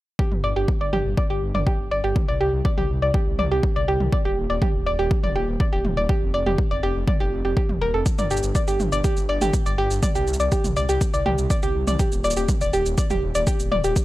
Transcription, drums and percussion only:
0.19 kick
0.32 mid tom
0.68 kick
0.93 mid tom
1.17 kick
1.54 mid tom
1.67 kick
2.16 kick, mid tom
2.65 kick
2.77 mid tom
3.14 kick
3.39 mid tom
3.63 kick
4.00 mid tom
4.13 kick
4.62 kick, mid tom
5.11 kick
5.23 mid tom
5.60 kick
5.85 mid tom
6.09 kick
6.46 mid tom
6.58 kick
7.08 kick, mid tom
7.57 kick
7.69 mid tom
8.06 kick, shaker
8.18 mid tom, shaker
8.31 shaker
8.37 shaker
8.43 shaker
8.55 kick, shaker
8.68 shaker
8.80 mid tom, shaker
8.92 shaker
9.04 kick, shaker
9.17 shaker
9.41 mid tom, shaker
9.53 kick, shaker
9.66 shaker
9.91 shaker
10.03 kick, mid tom, shaker
10.15 shaker
10.27 shaker
10.34 shaker
10.40 shaker
10.52 kick, shaker
10.64 mid tom, shaker
10.76 shaker
10.89 shaker
11.01 kick, shaker
11.14 shaker
11.26 mid tom
11.38 shaker
11.50 kick, shaker
11.63 shaker
11.87 mid tom, shaker
11.99 kick, shaker
12.12 shaker
12.24 shaker
12.30 shaker
12.37 shaker
12.49 kick, mid tom, shaker
12.61 shaker
12.73 shaker
12.86 shaker
12.98 kick, shaker
13.10 mid tom, shaker
13.35 shaker
13.47 kick, shaker
13.60 shaker
13.72 mid tom
13.84 shaker
13.96 kick, shaker

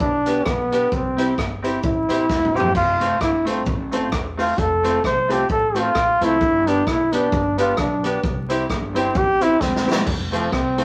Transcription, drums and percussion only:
0.00 kick, cabasa
0.26 closed hi-hat, cabasa
0.46 kick, cross-stick, cabasa
0.72 closed hi-hat, cabasa
0.92 kick, cabasa
1.18 closed hi-hat, cabasa
1.38 kick, cross-stick, cabasa
1.64 closed hi-hat, cabasa
1.83 kick, cabasa
2.09 closed hi-hat, cabasa
2.29 kick, snare, cabasa
2.45 mid tom
2.57 floor tom, cabasa
2.75 kick, crash, cabasa
3.01 closed hi-hat, cabasa
3.21 kick, cross-stick, cabasa
3.46 closed hi-hat, cabasa
3.66 kick, cabasa
3.92 closed hi-hat, cabasa
4.12 kick, cross-stick, cabasa
4.39 open hi-hat, cabasa
4.58 kick, hi-hat pedal, cabasa
4.84 closed hi-hat, cabasa
5.04 kick, cross-stick, cabasa
5.30 closed hi-hat, cabasa
5.49 kick, cabasa
5.75 closed hi-hat, cabasa
5.95 kick, cross-stick, cabasa
6.21 closed hi-hat, cabasa
6.41 kick, cabasa
6.67 closed hi-hat, cabasa
6.87 kick, cross-stick, cabasa
7.12 closed hi-hat, cabasa
7.32 kick, cabasa
7.58 closed hi-hat, cabasa
7.77 kick, cross-stick, cabasa
8.04 closed hi-hat, cabasa
8.24 kick, cabasa
8.50 closed hi-hat, cabasa
8.70 kick, cross-stick, cabasa
8.96 closed hi-hat, cabasa
9.15 kick, cabasa
9.41 closed hi-hat, cabasa
9.61 kick, snare, cabasa
9.76 snare
9.89 snare, cabasa
10.07 kick, crash
10.33 closed hi-hat
10.52 kick, cross-stick
10.78 closed hi-hat

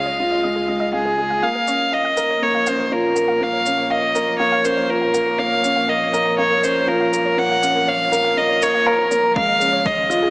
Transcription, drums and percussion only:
1.68 shaker
2.17 shaker
2.66 shaker
3.16 shaker
3.66 shaker
4.15 shaker
4.65 shaker
5.14 shaker
5.64 shaker
6.14 shaker
6.64 shaker
7.13 shaker
7.63 shaker
8.13 shaker
8.62 shaker
9.11 shaker
9.36 kick
9.61 shaker
9.86 kick
10.11 shaker

